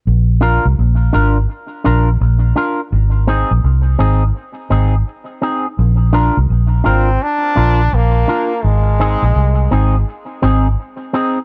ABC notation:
X:1
M:4/4
L:1/16
Q:"Swing 16ths" 1/4=84
K:Bbmix
V:1 name="Clean electric guitar"
z2 [DFB] z3 [DFB] z3 [DFB] z3 [DFB] z | z2 [CEA] z3 [CEA] z3 [CEA] z3 [CEA] z | z2 [DFB] z3 [DFB] z3 [DFB] z3 [DFB] z | z2 [CEA] z3 [CEA] z3 [CEA] z3 [CEA] z |]
V:2 name="Trombone"
z16 | z16 | z6 C2 D4 B,4 | A,8 z8 |]
V:3 name="Fingered electric bass" clef=bass
B,,,3 C,, B,,,2 A,,,2 z2 B,,,2 B,,,2 z2 | A,,,3 B,,, C,,2 A,,,2 z2 A,,,2 z4 | B,,,3 C,, B,,,2 A,,,2 z2 B,,,2 B,,,2 z2 | A,,,3 B,,, C,,2 A,,,2 z2 A,,,2 z4 |]